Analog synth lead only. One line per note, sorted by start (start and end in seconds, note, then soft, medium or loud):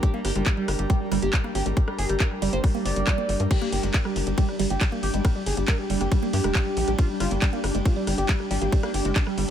0.03 0.10 G4 loud
0.14 0.20 G3 medium
0.25 0.31 G4 loud
0.35 0.42 G3 medium
0.46 0.53 G3 medium
0.57 0.64 G3 medium
0.79 0.86 G3 medium
0.90 0.96 G4 medium
1.01 1.07 G3 medium
1.12 1.18 G3 medium
1.22 1.29 G4 loud
1.33 1.40 G3 medium
1.44 1.51 G3 medium
1.55 1.62 G4 medium
1.66 1.73 G3 medium
1.77 1.83 G3 medium
1.88 1.94 G3 medium
1.99 2.05 G#4 medium
2.09 2.16 G3 medium
2.20 2.27 A#4 loud
2.31 2.38 G3 medium
2.42 2.49 G3 medium
2.53 2.60 C5 medium
2.64 2.70 G3 medium
2.75 2.81 G3 medium
2.86 3.42 D5 loud
3.51 3.57 G4 loud
3.62 3.68 G3 medium
3.73 3.79 G4 loud
3.83 3.90 G3 medium
3.94 4.01 G3 medium
4.05 4.12 G3 medium
4.27 4.33 G3 medium
4.38 4.44 G4 medium
4.49 4.55 G3 medium
4.59 4.66 G3 medium
4.70 4.77 G4 loud
4.81 4.88 G3 medium
4.92 4.99 G3 medium
5.03 5.10 G4 medium
5.14 5.20 G3 medium
5.25 5.31 G3 medium
5.36 5.42 G3 medium
5.46 5.53 G#4 medium
5.57 5.64 G3 medium
5.68 5.75 A#4 loud
5.79 5.86 G3 medium
5.90 5.97 G3 medium
6.01 6.07 G4 loud
6.12 6.18 G3 medium
6.23 6.29 G3 medium
6.33 6.90 G4 loud
6.99 7.05 F4 loud
7.09 7.16 G3 medium
7.20 7.27 F4 medium
7.31 7.38 G3 medium
7.53 7.60 G3 medium
7.75 7.81 G3 medium
7.85 7.92 F4 medium
7.96 8.03 G3 medium
8.07 8.14 G3 medium
8.18 8.25 G4 loud
8.29 8.36 G3 medium
8.40 8.46 G3 medium
8.51 8.57 G4 medium
8.62 8.68 G3 medium
8.72 8.79 G3 medium
8.83 8.90 G3 medium
8.94 9.01 G4 medium
9.05 9.12 G3 medium
9.16 9.23 D4 loud
9.27 9.33 G3 medium
9.38 9.44 G3 medium